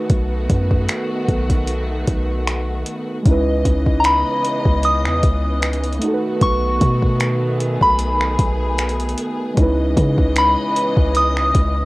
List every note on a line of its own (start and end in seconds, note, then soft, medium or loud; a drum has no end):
0.00 3.22 D#3 medium
0.00 2.81 A3 medium
0.00 3.22 A3 medium
0.00 2.82 B3 medium
0.00 3.22 B3 medium
0.00 2.83 D#4 medium
0.00 2.84 F#4 medium
0.00 3.22 F#4 medium
0.00 2.85 B4 medium
0.10 0.48 B1 loud
0.10 kick loud
0.10 closed hi-hat medium
0.50 0.88 F#2 loud
0.50 kick medium
0.50 closed hi-hat medium
0.71 kick medium
0.89 finger snap loud
0.89 closed hi-hat medium
1.28 2.04 B1 loud
1.28 kick medium
1.28 closed hi-hat soft
1.50 kick medium
1.50 closed hi-hat medium
1.68 closed hi-hat medium
2.08 2.83 B1 loud
2.08 kick medium
2.08 closed hi-hat medium
2.48 finger snap loud
2.48 closed hi-hat soft
2.86 closed hi-hat medium
3.23 3.64 C#2 loud
3.23 6.00 C#3 medium
3.23 6.00 E3 medium
3.23 5.97 G#3 medium
3.23 11.85 B3 medium
3.23 5.98 C#4 medium
3.23 6.00 D#5 medium
3.23 kick loud
3.23 closed hi-hat medium
3.27 5.99 D#4 medium
3.27 6.00 E4 medium
3.27 6.01 B4 medium
3.65 4.24 C#2 loud
3.65 kick medium
3.65 closed hi-hat medium
3.87 kick medium
4.00 4.06 A#5 medium
4.04 4.87 B5 medium
4.04 finger snap loud
4.04 closed hi-hat medium
4.45 closed hi-hat medium
4.65 5.07 C#2 loud
4.65 kick medium
4.83 5.99 D#6 loud
4.83 closed hi-hat medium
5.05 5.22 E2 loud
5.05 finger snap medium
5.23 5.99 C#2 loud
5.23 kick medium
5.23 closed hi-hat medium
5.62 finger snap loud
5.62 closed hi-hat soft
5.73 closed hi-hat soft
5.84 closed hi-hat soft
5.92 closed hi-hat soft
5.99 9.54 D#3 medium
5.99 9.12 A3 medium
5.99 9.54 A3 medium
5.99 9.13 B3 medium
5.99 7.59 F#4 medium
5.99 closed hi-hat medium
6.03 9.14 D#4 medium
6.03 9.15 F#4 medium
6.03 6.12 A4 medium
6.14 9.20 B4 medium
6.41 6.79 B1 loud
6.41 7.86 C#6 loud
6.41 kick loud
6.41 closed hi-hat medium
6.81 7.77 B2 loud
6.81 kick medium
6.81 closed hi-hat medium
7.02 kick medium
7.20 finger snap loud
7.20 closed hi-hat medium
7.60 9.55 G#4 medium
7.60 closed hi-hat medium
7.81 8.37 B1 medium
7.81 9.14 B5 medium
7.81 kick medium
7.99 closed hi-hat medium
8.21 finger snap medium
8.39 9.15 B1 loud
8.39 kick medium
8.39 closed hi-hat medium
8.78 finger snap loud
8.78 closed hi-hat medium
8.89 closed hi-hat soft
9.00 closed hi-hat soft
9.09 closed hi-hat soft
9.18 closed hi-hat medium
9.54 9.95 C#2 loud
9.54 11.85 C#3 medium
9.54 11.85 E3 medium
9.54 11.85 G#3 medium
9.54 11.85 C#4 medium
9.54 11.85 D#4 medium
9.54 11.85 D#5 medium
9.54 kick loud
9.54 closed hi-hat medium
9.60 11.85 E4 medium
9.60 11.85 B4 medium
9.97 10.17 C#3 loud
9.97 kick medium
9.97 closed hi-hat medium
10.18 10.56 C#2 loud
10.18 kick medium
10.36 11.19 B5 medium
10.36 finger snap loud
10.36 closed hi-hat medium
10.76 closed hi-hat medium
10.97 11.52 C#2 loud
10.97 kick medium
11.15 11.85 D#6 loud
11.15 closed hi-hat medium
11.37 finger snap medium
11.55 11.85 C#2 loud
11.55 kick medium
11.55 closed hi-hat medium